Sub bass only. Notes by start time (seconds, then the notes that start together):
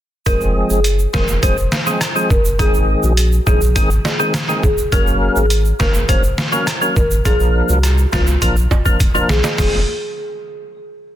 0.26 F1
0.70 F#1
1.14 F1
1.43 F1
2.30 F#1
2.59 G#1
3.03 A#1
3.47 A#1
3.76 G#1
4.63 G#1
4.92 F#1
5.36 G#1
5.80 F#1
6.09 F#1
6.96 G#1
7.25 A#1
7.69 C2
8.13 C2
8.42 A#1
9.29 A#1
9.58 F1